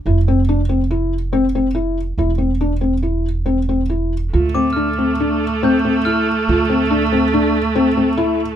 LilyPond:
<<
  \new Staff \with { instrumentName = "Glockenspiel" } { \time 5/4 \key d \dorian \tempo 4 = 140 r1 r4 | r1 r4 | r8 d'''16 f'''2~ f'''16 g'''4 f'''4~ | f'''2 r2. | }
  \new Staff \with { instrumentName = "Felt piano" } { \time 5/4 \key d \dorian e'8 c'8 d'8 c'8 e'4 c'8 c'8 e'4 | e'8 c'8 d'8 c'8 e'4 c'8 c'8 e'4 | f'8 c'8 d'8 c'8 d'4 c'8 c'8 e'4 | f'8 c'8 d'8 c'8 d'4 c'8 c'8 e'4 | }
  \new Staff \with { instrumentName = "Viola" } { \time 5/4 \key d \dorian r1 r4 | r1 r4 | a1~ a4~ | a1~ a4 | }
  \new Staff \with { instrumentName = "Upright bass" } { \clef bass \time 5/4 \key d \dorian f,,1~ f,,4 | e,,1~ e,,4 | d,1~ d,4 | d,1~ d,4 | }
>>